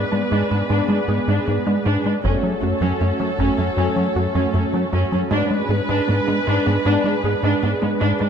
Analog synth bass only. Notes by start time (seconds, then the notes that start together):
0.12 G#3
0.32 G#2
0.51 G#2
0.70 G#2
0.89 G#3
1.08 G#2
1.28 G#2
1.48 G#2
1.67 G#3
1.86 G#2
2.06 G#3
2.25 F#2
2.43 F#3
2.62 F#2
2.81 F#2
3.01 F#2
3.20 F#3
3.39 F#2
3.58 F#2
3.77 F#2
3.96 F#3
4.16 F#2
4.35 F#2
4.54 F#2
4.73 F#3
4.93 F#2
5.12 F#3
5.31 G#2
5.51 G#3
5.69 G#2
5.89 G#2
6.09 G#2
6.28 G#3
6.47 G#2
6.67 G#2
6.86 G#2
7.04 G#3
7.24 G#2
7.43 G#2
7.63 G#2
7.83 G#3
8.01 G#2
8.21 G#3